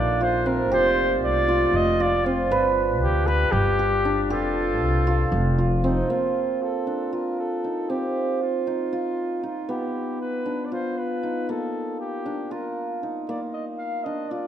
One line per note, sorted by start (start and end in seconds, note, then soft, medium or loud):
0.00 0.71 A#1 medium
0.00 0.70 A3 medium
0.00 0.70 A#3 medium
0.00 2.57 A#3 medium
0.00 0.70 D4 medium
0.00 2.01 D#4 medium
0.00 0.20 F4 medium
0.00 0.71 G4 medium
0.00 0.24 D5 medium
0.21 1.48 F4 medium
0.21 0.49 C5 medium
0.46 2.26 C4 medium
0.46 0.72 A#4 medium
0.71 1.22 F1 medium
0.71 4.26 G3 medium
0.71 2.49 A3 medium
0.71 2.49 F4 medium
0.71 3.27 G4 medium
0.71 1.20 C5 medium
1.22 1.68 C2 medium
1.22 1.77 D5 loud
1.48 2.00 F4 medium
1.73 2.50 F1 medium
1.73 2.03 D#5 medium
2.00 5.07 F4 medium
2.00 2.27 D5 medium
2.26 2.57 C4 medium
2.26 2.76 F4 medium
2.50 3.01 G1 medium
2.50 4.29 D4 medium
2.50 5.25 B4 medium
2.50 4.30 B4 medium
3.01 3.47 D2 medium
3.01 3.28 G4 medium
3.27 3.79 G4 medium
3.27 3.53 B4 loud
3.52 4.30 G1 medium
3.52 4.23 G4 medium
3.79 4.30 G4 medium
4.05 6.87 D4 medium
4.23 4.32 G4 medium
4.30 4.80 F1 loud
4.30 6.08 F3 medium
4.30 6.09 C4 medium
4.30 5.58 F4 medium
4.30 7.44 G4 medium
4.30 6.08 A4 medium
4.80 5.26 C2 medium
5.07 5.58 F4 medium
5.32 6.00 F1 medium
5.58 7.12 F4 medium
5.77 5.86 F4 soft
5.84 7.89 C4 medium
5.84 6.12 D#4 medium
6.10 9.75 A#3 medium
6.10 6.64 F4 medium
6.62 7.15 A4 medium
6.87 7.70 D4 soft
7.13 8.92 F4 soft
7.13 7.39 A#4 soft
7.39 7.91 A4 medium
7.64 8.67 D#4 soft
7.89 9.75 C4 medium
7.89 8.43 G4 medium
8.42 9.44 F4 medium
8.67 9.43 D#4 soft
8.93 10.71 F4 medium
9.43 10.52 D#4 soft
9.43 9.71 F4 soft
9.69 11.55 B3 medium
9.69 10.21 G4 medium
10.21 10.67 B4 medium
10.46 11.29 D4 soft
10.66 10.74 D5 soft
10.72 12.51 F4 soft
10.72 11.00 C5 medium
10.98 11.51 B4 medium
11.23 12.32 D#4 soft
11.49 13.28 A#3 medium
11.49 12.00 A4 medium
12.00 12.53 G4 medium
12.26 13.09 D4 soft
12.51 14.31 F4 medium
12.51 13.02 A#4 medium
13.03 14.12 D#4 soft
13.29 14.47 A#3 medium
13.29 13.41 D5 soft
13.53 13.65 D#5 medium
13.78 14.05 F5 medium
14.04 14.47 D4 soft
14.04 14.31 D#5 medium
14.30 14.47 F4 medium
14.30 14.47 D5 soft